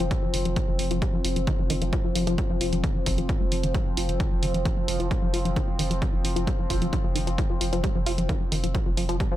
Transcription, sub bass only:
0.00 0.11 F1 medium
0.34 0.45 F1 medium
0.46 0.56 F1 medium
0.68 0.79 F1 medium
0.79 0.90 F1 medium
0.91 1.02 F1 medium
1.25 1.36 F1 loud
1.36 1.47 F1 medium
1.59 1.69 F1 medium
1.70 1.81 F1 loud
1.82 1.93 F1 medium
2.16 2.27 F1 loud
2.27 2.38 F1 medium
2.50 2.60 F1 medium
2.61 2.72 F1 medium
2.73 2.83 F1 medium
3.06 3.18 F1 loud
3.18 3.29 F1 medium
3.41 3.51 F1 medium
3.52 3.63 F1 loud
3.64 3.74 F1 medium
3.97 4.08 F1 loud
4.09 4.20 F1 medium
4.32 4.42 F1 medium
4.43 4.54 F1 medium
4.55 4.65 F1 medium
4.88 4.99 F1 loud
5.00 5.11 F1 medium
5.23 5.33 F1 medium
5.34 5.45 F1 medium
5.45 5.56 F1 medium
5.79 5.90 F1 loud
5.91 6.02 F1 medium
6.14 6.24 F1 medium
6.25 6.36 F1 loud
6.36 6.47 F1 medium
6.70 6.81 F1 loud
6.82 6.93 F1 medium
7.05 7.15 F1 medium
7.16 7.27 F1 loud
7.27 7.38 F1 medium
7.61 7.72 F1 loud
7.73 7.84 F1 medium
7.95 8.06 F1 medium
8.07 8.18 F1 loud
8.18 8.29 F1 medium
8.52 8.63 F1 loud
8.64 8.75 F1 medium
8.87 8.97 F1 medium
8.98 9.09 F1 medium
9.09 9.20 F1 medium

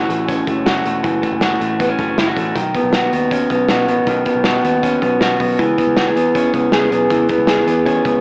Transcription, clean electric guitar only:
0.00 1.02 E3 medium
0.00 0.28 C#4 medium
0.00 0.66 F#4 medium
0.09 0.46 A3 soft
0.28 1.79 C#4 medium
0.47 0.84 A3 soft
0.66 1.41 F#4 medium
0.85 1.21 A3 soft
1.03 2.55 E3 medium
1.22 1.59 A3 medium
1.41 2.18 F#4 medium
1.61 1.98 A3 medium
1.80 1.89 B3 medium
1.89 2.59 C#4 soft
1.99 2.36 A3 soft
2.18 2.27 E4 medium
2.27 2.60 F#4 medium
2.38 2.60 A3 medium
2.56 4.06 D#3 medium
2.75 3.13 B3 medium
2.94 3.68 F#4 medium
3.13 3.50 B3 medium
3.32 4.83 C#4 medium
3.51 3.88 B3 medium
3.69 4.44 F#4 medium
3.89 4.25 B3 medium
4.07 5.58 D#3 medium
4.26 4.64 B3 medium
4.45 5.19 F#4 medium
4.64 5.02 B3 soft
4.83 5.80 C#4 medium
5.02 5.39 B3 soft
5.21 5.62 F#4 medium
5.40 5.77 B3 medium
5.59 7.10 E3 medium
5.77 6.15 B3 medium
5.97 6.07 F#4 medium
6.07 6.72 G#4 soft
6.16 6.53 B3 medium
6.35 7.85 C#4 medium
6.54 6.90 B3 soft
6.73 7.47 G#4 medium
6.91 7.28 B3 medium
7.11 8.21 E3 medium
7.30 7.66 B3 soft
7.49 8.21 G#4 medium
7.68 8.04 B3 medium
7.86 8.21 C#4 medium
8.05 8.21 B3 soft

